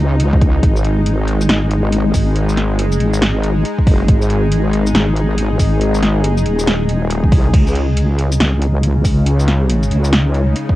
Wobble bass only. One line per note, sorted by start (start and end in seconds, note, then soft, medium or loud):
0.00 0.62 C#2 medium
0.63 1.48 G#1 loud
1.49 2.13 G#1 loud
2.14 2.74 G#1 medium
2.74 2.99 G1 medium
3.01 3.64 G#1 medium
3.87 4.07 F#1 medium
4.08 4.93 G#1 loud
4.95 5.58 G#1 loud
5.59 6.19 G#1 medium
6.19 6.44 G1 medium
6.46 7.31 D#1 medium
7.32 7.52 C2 loud
7.54 8.39 C#2 medium
8.40 9.03 C#2 loud
9.05 9.90 C#2 loud
9.91 10.54 C#2 medium